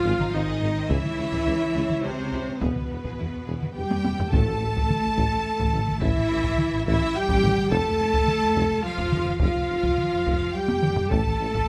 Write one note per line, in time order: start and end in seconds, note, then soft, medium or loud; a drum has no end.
0.00 0.33 F3 medium
0.00 0.33 F4 loud
0.00 0.35 F4 loud
0.00 0.90 C5 medium
0.00 0.33 F5 medium
0.04 0.10 G#1 medium
0.04 0.11 G#1 medium
0.04 0.12 G#4 medium
0.19 0.25 G#1 medium
0.19 0.25 D#4 medium
0.19 taiko mid soft
0.33 0.39 G#1 medium
0.33 0.40 G#1 medium
0.33 0.89 D#3 medium
0.33 0.40 C4 medium
0.33 0.90 D#4 medium
0.33 0.89 D#5 medium
0.47 0.53 G#1 loud
0.47 0.54 G#4 medium
0.62 0.67 G#1 medium
0.62 0.68 G#1 medium
0.62 0.69 D#4 medium
0.75 0.81 G#1 medium
0.75 0.82 C4 medium
0.89 0.95 C#2 loud
0.89 2.03 E3 medium
0.89 2.01 E4 medium
0.89 2.01 E4 loud
0.89 0.96 G#4 medium
0.89 2.57 C#5 medium
0.89 2.03 E5 medium
0.89 taiko medium
1.05 taiko mid soft
1.18 1.24 C#2 medium
1.18 1.24 C#4 medium
1.32 1.38 C#2 medium
1.32 1.39 G#4 medium
1.32 taiko medium
1.47 1.52 C#2 medium
1.47 1.53 C#2 medium
1.47 1.52 E4 medium
1.60 1.67 C#2 medium
1.60 1.66 C#4 medium
1.74 1.80 C#2 medium
1.74 1.81 C#2 medium
1.74 1.80 G#4 medium
1.89 1.95 C#2 medium
1.89 1.94 E4 medium
1.89 taiko mid soft
2.03 2.10 C#2 medium
2.03 2.60 C3 medium
2.03 2.61 C3 medium
2.03 2.61 C4 medium
2.03 2.09 C#4 medium
2.03 2.59 C5 medium
2.18 2.24 C#2 medium
2.18 2.24 G#4 medium
2.32 2.38 C#2 medium
2.32 2.39 C#2 medium
2.32 2.38 E4 medium
2.47 2.53 C#2 medium
2.47 2.52 C#4 medium
2.60 2.67 E1 medium
2.60 2.67 E2 medium
2.60 3.73 B2 medium
2.60 3.73 B3 medium
2.60 3.76 B3 medium
2.60 2.67 G#4 medium
2.60 3.75 B4 medium
2.60 taiko loud
2.76 taiko mid soft
2.90 2.97 E1 soft
2.90 2.96 E2 soft
2.90 2.95 B3 soft
3.04 3.09 E2 medium
3.04 3.11 G#4 medium
3.04 taiko medium
3.19 3.25 E1 soft
3.19 3.25 E2 medium
3.19 3.24 E4 medium
3.33 3.38 E2 soft
3.33 3.39 B3 soft
3.46 3.53 E1 medium
3.46 3.53 E2 medium
3.46 3.52 G#4 medium
3.59 3.68 E2 soft
3.59 3.65 E4 soft
3.59 taiko mid soft
3.75 3.82 E1 medium
3.75 3.82 E2 medium
3.75 4.29 G3 medium
3.75 3.80 B3 medium
3.75 4.29 G4 medium
3.75 4.28 G5 medium
3.75 4.33 G5 medium
3.89 3.96 E2 medium
3.89 3.95 G#4 medium
3.89 taiko high medium
4.04 4.10 E1 soft
4.04 4.11 E2 soft
4.04 4.10 E4 medium
4.04 taiko high medium
4.17 4.25 E2 medium
4.17 4.23 B3 medium
4.17 taiko low medium
4.31 4.38 A1 medium
4.31 4.39 A1 medium
4.31 5.14 A2 loud
4.31 6.03 A3 medium
4.31 5.99 A4 medium
4.31 5.85 A4 medium
4.31 6.02 A5 medium
4.31 6.01 A5 loud
4.31 6.03 A5 medium
4.31 taiko medium
4.48 4.53 A1 medium
4.61 4.66 A1 medium
4.61 4.68 A1 medium
4.77 4.83 A1 medium
4.77 taiko medium
4.90 taiko mid medium
5.05 5.11 A1 medium
5.17 5.23 A1 medium
5.17 5.25 A1 medium
5.17 taiko medium
5.34 5.39 A1 medium
5.61 5.67 A1 medium
5.61 taiko medium
5.73 5.79 A1 medium
5.73 5.81 A1 medium
5.73 taiko mid medium
5.88 5.95 A1 medium
5.88 taiko mid medium
6.01 6.08 A1 loud
6.01 6.09 A1 loud
6.01 6.86 E3 medium
6.01 6.85 E4 medium
6.01 6.85 E4 loud
6.01 6.86 E5 medium
6.01 6.85 E5 loud
6.01 taiko loud
6.17 6.23 A1 medium
6.31 6.37 A1 medium
6.44 6.51 A1 medium
6.44 taiko medium
6.58 taiko mid medium
6.74 6.79 A1 medium
6.86 6.93 A1 loud
6.86 7.15 E3 medium
6.86 7.14 E4 loud
6.86 7.15 E4 loud
6.86 7.18 E5 loud
6.86 7.15 E5 loud
6.86 7.15 E5 medium
6.86 taiko medium
7.02 7.07 A1 medium
7.15 7.70 G3 loud
7.15 7.72 G4 loud
7.15 7.71 G5 loud
7.15 7.72 G5 loud
7.15 7.71 G5 loud
7.29 7.35 A1 loud
7.29 taiko medium
7.43 7.49 A1 medium
7.43 taiko mid medium
7.58 7.64 A1 medium
7.58 taiko mid medium
7.71 7.77 F1 loud
7.71 8.84 A3 loud
7.71 8.84 A4 loud
7.71 8.82 A4 loud
7.71 8.81 A5 loud
7.71 8.82 A5 loud
7.71 8.84 A5 loud
7.71 taiko loud
7.86 7.92 F1 medium
8.00 8.05 F1 medium
8.00 8.06 F1 medium
8.13 8.20 F1 loud
8.13 taiko medium
8.28 taiko mid medium
8.43 8.48 F1 medium
8.56 8.61 F1 loud
8.56 8.62 F1 loud
8.56 taiko medium
8.71 8.77 F1 medium
8.83 9.40 F3 medium
8.83 9.39 F4 loud
8.83 9.41 F4 loud
8.83 9.39 F5 medium
8.83 9.40 F5 medium
8.98 9.05 F1 medium
8.98 taiko medium
9.12 9.18 F1 medium
9.12 9.19 F1 medium
9.12 taiko mid medium
9.26 9.33 F1 medium
9.26 taiko mid medium
9.40 9.47 F1 medium
9.40 10.53 F3 medium
9.40 10.52 F4 loud
9.40 10.53 F4 medium
9.40 10.52 F5 medium
9.40 10.25 F5 loud
9.40 10.53 F5 medium
9.40 taiko loud
9.56 9.61 F1 medium
9.70 9.75 F1 medium
9.70 9.76 F1 soft
9.83 9.89 F1 medium
9.83 taiko medium
9.98 taiko mid medium
10.13 10.19 F1 medium
10.26 10.33 F1 medium
10.26 taiko medium
10.41 10.47 F1 medium
10.53 11.12 G3 medium
10.53 11.12 G4 medium
10.53 11.13 G5 medium
10.53 11.12 G5 medium
10.68 10.75 F1 medium
10.68 taiko high loud
10.83 10.90 F1 medium
10.83 taiko mid medium
10.96 11.04 F1 medium
10.96 taiko low loud
11.09 11.18 A1 medium
11.09 11.68 A3 medium
11.09 11.68 A4 loud
11.09 11.68 A5 loud
11.09 11.68 A5 medium
11.09 taiko loud
11.27 11.32 A1 medium
11.41 11.46 A1 medium
11.41 11.47 A1 medium
11.54 11.60 A1 medium
11.54 taiko medium